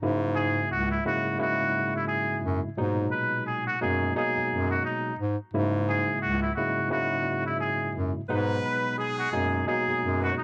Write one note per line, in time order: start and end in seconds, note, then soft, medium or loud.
0.02 0.63 G#2 loud
0.02 0.98 G#2 loud
0.02 0.99 C#3 medium
0.02 0.99 F#3 medium
0.02 0.99 G#3 medium
0.02 0.99 A#3 medium
0.02 0.99 E4 loud
0.36 0.67 G#4 loud
0.71 1.01 C#2 loud
0.71 0.89 F#4 medium
0.91 1.04 E4 medium
1.05 1.37 G#2 medium
1.05 1.37 C#3 medium
1.05 1.38 F#3 medium
1.05 1.38 G#3 medium
1.05 1.38 A#3 medium
1.05 1.38 E4 loud
1.05 1.37 F#4 medium
1.39 2.68 G#2 loud
1.39 2.68 C#3 medium
1.39 2.68 F#3 medium
1.39 2.68 G#3 medium
1.39 2.68 A#3 medium
1.39 2.68 E4 loud
1.39 1.92 F#4 medium
1.96 2.07 E4 medium
2.08 2.39 G#4 medium
2.43 2.61 F#2 loud
2.77 3.08 G#2 loud
2.77 3.74 A#2 medium
2.77 3.74 B2 medium
2.77 3.74 F#3 medium
2.77 3.74 G#3 medium
2.77 3.74 D#4 loud
3.11 3.43 B4 medium
3.47 3.65 G#4 medium
3.67 3.80 F#4 medium
3.81 4.12 F#2 medium
3.81 4.13 B2 medium
3.81 4.13 F#3 medium
3.81 4.13 G#3 medium
3.81 4.13 A#3 medium
3.81 4.14 D#4 loud
3.81 4.13 G#4 medium
4.15 5.12 B2 loud
4.15 5.12 F#3 medium
4.15 5.12 G#3 medium
4.15 5.12 A#3 medium
4.15 5.12 D#4 loud
4.15 4.67 G#4 medium
4.36 4.41 F#2 soft
4.50 4.81 F#2 loud
4.71 4.83 F#4 medium
4.85 5.16 D#4 medium
5.19 5.37 G#2 loud
5.54 6.15 G#2 loud
5.54 6.50 G#2 loud
5.54 6.50 C#3 medium
5.54 6.50 F#3 medium
5.54 6.50 G#3 medium
5.54 6.51 A#3 loud
5.54 6.51 E4 loud
5.89 6.20 G#4 medium
6.22 6.53 C#2 loud
6.22 6.40 F#4 medium
6.42 6.55 E4 medium
6.56 6.89 G#2 medium
6.56 6.89 C#3 medium
6.56 6.89 F#3 medium
6.56 6.89 G#3 medium
6.56 6.89 A#3 medium
6.56 6.89 E4 loud
6.56 6.87 F#4 medium
6.90 8.19 G#2 loud
6.90 8.20 C#3 medium
6.90 8.20 F#3 medium
6.90 8.20 G#3 medium
6.90 8.20 A#3 medium
6.90 8.20 E4 loud
6.90 7.43 F#4 medium
7.46 7.59 E4 medium
7.60 7.91 G#4 medium
7.95 8.13 F#2 medium
8.29 8.60 G#2 loud
8.29 9.26 B2 medium
8.29 9.26 F#3 medium
8.29 9.26 G#3 medium
8.29 8.94 B3 loud
8.29 9.26 B3 medium
8.29 9.26 D#4 loud
8.29 8.94 B4 loud
8.65 8.95 B4 medium
8.98 9.63 G#3 loud
8.98 9.63 G#4 loud
8.98 9.16 G#4 medium
9.19 9.31 F#4 medium
9.32 9.64 F#2 medium
9.32 9.65 B2 medium
9.32 9.65 F#3 medium
9.32 9.65 G#3 medium
9.32 9.65 A#3 medium
9.32 9.65 D#4 loud
9.32 9.63 G#4 medium
9.67 10.44 B2 loud
9.67 10.44 F#3 medium
9.67 10.44 G#3 medium
9.67 10.44 A#3 medium
9.67 10.44 D#4 loud
9.67 10.19 G#4 medium
9.88 9.93 F#2 soft
9.88 9.99 G#3 medium
9.88 9.99 G#4 medium
10.02 10.32 F#2 loud
10.21 10.33 B3 medium
10.21 10.35 F#4 medium
10.21 10.33 B4 medium
10.38 10.44 D#4 medium